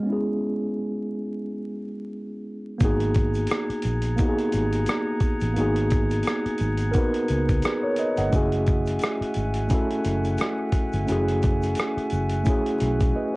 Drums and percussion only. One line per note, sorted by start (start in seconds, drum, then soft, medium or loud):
2.80 kick loud
2.80 closed hi-hat medium
2.80 shaker medium
3.00 closed hi-hat soft
3.15 kick medium
3.15 closed hi-hat medium
3.15 shaker soft
3.34 closed hi-hat soft
3.34 shaker soft
3.47 closed hi-hat medium
3.47 shaker medium
3.52 cross-stick loud
3.70 closed hi-hat soft
3.82 closed hi-hat medium
3.82 shaker soft
4.02 closed hi-hat medium
4.02 shaker soft
4.18 kick medium
4.18 closed hi-hat medium
4.18 shaker medium
4.38 closed hi-hat soft
4.52 closed hi-hat medium
4.52 shaker soft
4.73 closed hi-hat soft
4.73 shaker soft
4.86 cross-stick loud
4.86 closed hi-hat medium
4.86 shaker medium
5.20 kick medium
5.20 closed hi-hat medium
5.20 shaker medium
5.41 closed hi-hat soft
5.41 shaker medium
5.56 closed hi-hat medium
5.56 shaker medium
5.76 closed hi-hat soft
5.90 kick medium
5.90 closed hi-hat medium
5.90 shaker soft
6.10 closed hi-hat soft
6.10 shaker medium
6.23 closed hi-hat medium
6.23 shaker medium
6.27 cross-stick loud
6.46 closed hi-hat soft
6.58 closed hi-hat medium
6.58 shaker medium
6.78 closed hi-hat soft
6.78 shaker soft
6.94 kick medium
6.94 closed hi-hat medium
6.94 shaker medium
7.14 closed hi-hat soft
7.28 closed hi-hat medium
7.28 shaker soft
7.49 kick medium
7.49 closed hi-hat soft
7.49 shaker soft
7.62 cross-stick loud
7.62 closed hi-hat medium
7.62 shaker medium
7.96 closed hi-hat medium
7.96 shaker soft
8.17 closed hi-hat medium
8.17 shaker medium
8.32 kick loud
8.32 closed hi-hat medium
8.32 shaker medium
8.52 closed hi-hat soft
8.67 kick medium
8.67 closed hi-hat medium
8.67 shaker soft
8.86 closed hi-hat soft
8.86 shaker soft
8.99 closed hi-hat medium
8.99 shaker medium
9.04 cross-stick loud
9.22 closed hi-hat soft
9.34 closed hi-hat medium
9.34 shaker soft
9.54 closed hi-hat medium
9.54 shaker soft
9.70 kick medium
9.70 closed hi-hat medium
9.70 shaker medium
9.91 closed hi-hat soft
10.04 closed hi-hat medium
10.04 shaker soft
10.24 closed hi-hat soft
10.24 shaker soft
10.38 cross-stick loud
10.38 closed hi-hat medium
10.38 shaker medium
10.72 kick medium
10.72 closed hi-hat medium
10.72 shaker soft
10.92 closed hi-hat soft
10.92 shaker soft
11.08 closed hi-hat medium
11.08 shaker medium
11.28 closed hi-hat soft
11.42 kick loud
11.42 closed hi-hat medium
11.42 shaker soft
11.62 closed hi-hat soft
11.62 shaker soft
11.75 closed hi-hat medium
11.75 shaker medium
11.79 cross-stick loud
11.98 closed hi-hat soft
12.10 closed hi-hat medium
12.10 shaker medium
12.30 closed hi-hat medium
12.30 shaker soft
12.45 kick loud
12.45 closed hi-hat medium
12.45 shaker medium
12.66 closed hi-hat soft
12.80 closed hi-hat medium
12.80 shaker soft
13.00 kick medium
13.00 closed hi-hat medium
13.00 shaker soft